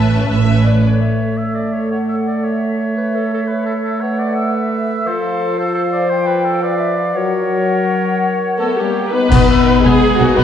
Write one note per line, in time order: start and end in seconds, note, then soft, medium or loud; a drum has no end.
0.00 0.22 A1 soft
0.00 0.23 A2 soft
0.00 0.45 C#4 soft
0.00 0.45 B4 soft
0.00 0.27 E5 medium
0.00 0.25 A5 medium
0.29 0.77 A1 soft
0.29 0.77 A2 soft
0.29 0.64 E5 medium
0.47 0.83 C#4 soft
0.47 0.83 B4 soft
0.66 0.84 D5 soft
0.83 5.01 A3 soft
0.83 2.92 A4 soft
0.83 1.39 C#5 soft
0.83 1.86 E5 soft
1.37 1.56 E5 soft
1.54 1.74 D5 soft
1.73 1.90 C#5 soft
1.90 1.99 C#5 soft
1.90 2.43 F#5 soft
2.08 2.16 E5 soft
2.26 2.45 D5 soft
2.42 3.49 C#5 soft
2.42 2.96 E5 soft
2.97 3.16 B4 soft
2.97 3.99 E5 soft
3.15 3.32 A4 soft
3.33 3.41 A4 soft
3.48 3.65 B4 soft
3.48 4.01 C#5 soft
3.65 3.73 A4 soft
3.83 4.02 A4 soft
4.01 5.07 B4 soft
4.01 4.20 C#5 soft
4.01 4.52 F#5 soft
4.18 4.35 D5 medium
4.35 5.08 E5 soft
4.54 5.06 E5 soft
5.06 7.11 F3 medium
5.06 5.60 A4 medium
5.06 5.57 C5 soft
5.06 6.10 F5 soft
5.58 5.74 A4 medium
5.58 6.62 C5 medium
5.74 5.82 A4 medium
5.91 6.11 D5 medium
6.10 6.28 C5 medium
6.10 6.61 G5 soft
6.26 6.46 B4 medium
6.44 6.64 A4 medium
6.61 7.14 B4 soft
6.61 7.17 D5 soft
6.61 6.79 F5 medium
6.79 6.97 E5 soft
6.96 7.14 F5 medium
7.13 8.42 F#3 medium
7.13 9.10 A#4 medium
7.13 9.14 C#5 soft
7.13 9.03 F#5 soft
8.58 8.67 A3 medium
8.58 8.75 B3 medium
8.58 8.75 A4 medium
8.58 8.67 A4 medium
8.76 9.13 G3 medium
8.76 9.12 A#3 soft
8.76 9.13 G4 medium
8.76 9.14 G4 soft
9.12 9.82 B3 medium
9.12 9.84 D#4 medium
9.12 9.83 B4 medium
9.12 9.84 B4 medium
9.30 9.38 B1 medium
9.30 9.38 B2 medium
9.30 9.47 B3 medium
9.30 10.44 D#4 medium
9.30 9.51 D#5 medium
9.30 10.44 F#5 medium
9.30 concert bass drum medium
9.30 crash medium
9.49 9.67 E5 medium
9.68 9.75 F#5 medium
9.84 9.91 B1 medium
9.84 9.92 B2 medium
9.84 10.20 G#3 medium
9.84 10.19 B3 medium
9.84 10.01 B3 medium
9.84 10.19 G#4 medium
9.84 10.20 G#4 medium
9.84 10.39 G#5 medium
10.19 10.26 B1 medium
10.19 10.26 B2 medium
10.19 10.37 F#3 medium
10.19 10.37 A#3 medium
10.19 10.27 B3 medium
10.19 10.36 F#4 medium
10.19 10.38 F#4 medium
10.36 10.44 B1 medium
10.36 10.44 B2 medium
10.36 10.44 B3 loud
10.36 10.44 B3 medium
10.36 10.44 D#4 medium
10.36 10.44 B4 medium
10.36 10.44 B4 loud
10.36 10.44 F#5 medium